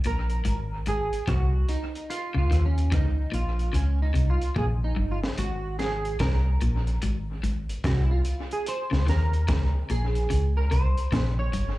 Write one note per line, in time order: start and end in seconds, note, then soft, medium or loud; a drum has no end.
0.04 0.42 A#1 medium
0.04 0.30 A#2 medium
0.04 0.88 A#4 loud
0.04 closed hi-hat medium
0.30 closed hi-hat soft
0.45 0.83 G#1 loud
0.45 0.70 G#2 medium
0.45 closed hi-hat medium
0.86 1.10 G#1 medium
0.86 1.02 G#2 medium
0.86 1.29 G#4 loud
0.86 closed hi-hat medium
1.13 closed hi-hat medium
1.27 1.65 C2 medium
1.27 1.52 C3 medium
1.27 1.71 F#4 medium
1.27 kick loud
1.27 cross-stick loud
1.27 closed hi-hat medium
1.69 2.11 D#4 medium
1.69 closed hi-hat medium
1.95 closed hi-hat soft
2.10 2.37 F4 loud
2.10 closed hi-hat loud
2.34 2.50 C#2 loud
2.34 2.44 C#3 medium
2.34 2.66 F4 medium
2.51 2.88 D#2 medium
2.51 2.75 D#3 medium
2.51 cross-stick medium
2.51 closed hi-hat medium
2.66 2.93 C#4 medium
2.78 closed hi-hat soft
2.92 3.16 C#2 medium
2.92 3.07 C#3 medium
2.92 3.31 D#4 medium
2.92 kick loud
2.92 cross-stick loud
2.92 closed hi-hat medium
3.32 3.70 A#1 medium
3.32 3.57 A#2 medium
3.32 3.76 F4 medium
3.32 closed hi-hat medium
3.59 closed hi-hat soft
3.73 4.11 C#2 medium
3.73 3.98 C#3 medium
3.73 4.02 C#4 medium
3.73 closed hi-hat medium
4.02 4.30 D#4 medium
4.14 4.38 C2 loud
4.14 4.30 C3 medium
4.14 closed hi-hat medium
4.30 4.55 F4 medium
4.42 closed hi-hat soft
4.56 4.94 A#1 medium
4.56 4.81 A#2 medium
4.56 4.65 G#4 medium
4.56 kick loud
4.84 5.12 D#4 medium
4.96 5.20 G1 loud
4.96 5.12 G2 medium
5.11 5.19 F4 medium
5.24 snare medium
5.38 6.16 G#1 loud
5.38 5.63 G#2 medium
5.38 5.77 F#4 medium
5.38 closed hi-hat loud
5.79 6.19 G#4 medium
5.79 snare medium
5.79 closed hi-hat medium
6.05 closed hi-hat soft
6.19 6.58 C2 medium
6.19 6.45 C3 medium
6.19 6.98 A#4 medium
6.19 kick loud
6.19 snare loud
6.19 closed hi-hat medium
6.61 6.99 A#1 medium
6.61 6.86 A#2 medium
6.61 closed hi-hat medium
6.87 closed hi-hat soft
7.02 7.39 G#1 loud
7.02 7.27 G#2 medium
7.02 closed hi-hat medium
7.43 7.67 G#1 loud
7.43 7.59 G#2 medium
7.43 closed hi-hat medium
7.69 closed hi-hat medium
7.84 8.22 C2 medium
7.84 8.10 C3 medium
7.84 8.03 F#4 medium
7.84 kick loud
7.84 snare loud
7.84 closed hi-hat medium
8.02 8.10 E4 medium
8.11 8.53 F4 medium
8.25 closed hi-hat medium
8.51 8.68 G#4 medium
8.51 closed hi-hat soft
8.66 9.09 C5 loud
8.66 closed hi-hat loud
8.91 9.06 C#2 loud
8.91 9.01 C#3 medium
8.91 snare medium
9.07 9.45 D#2 medium
9.07 9.32 D#3 medium
9.07 9.93 A#4 medium
9.07 snare medium
9.07 closed hi-hat medium
9.33 closed hi-hat soft
9.48 9.72 C#2 medium
9.48 9.64 C#3 medium
9.48 kick loud
9.48 snare loud
9.48 closed hi-hat medium
9.90 10.27 A#1 loud
9.90 10.15 A#2 medium
9.90 10.53 G#4 medium
9.90 closed hi-hat medium
10.15 closed hi-hat soft
10.30 10.68 C#2 medium
10.30 10.55 C#3 medium
10.30 closed hi-hat medium
10.57 10.72 A#4 medium
10.71 10.95 C2 medium
10.71 10.87 C3 medium
10.71 11.39 C5 loud
10.71 closed hi-hat medium
10.97 closed hi-hat medium
11.12 11.50 A#1 loud
11.12 11.37 A#2 medium
11.12 kick loud
11.12 snare loud
11.12 closed hi-hat medium
11.39 11.78 C#5 medium
11.53 11.77 G1 loud
11.53 11.69 G2 medium
11.53 closed hi-hat medium